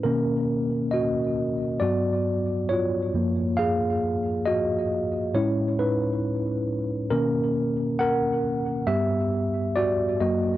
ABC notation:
X:1
M:4/4
L:1/8
Q:"Swing 16ths" 1/4=68
K:Blyd
V:1 name="Tine electric piano"
[CA]2 [Fd]2 [F=d]2 [Ec]2 | [Ge]2 [Fd]2 [=Ec] [DB]2 z | [CA]2 [Af]2 [=G=e]2 [F=d] [F^d] |]
V:2 name="Tine electric piano" clef=bass
[B,,D,A,]4 [=G,,F,B,] z2 [F,,E,A,] | z4 [=A,,G,C] z3 | [B,,D,A,]3 z [=G,,=G,B,]3 [F,,F,A,] |]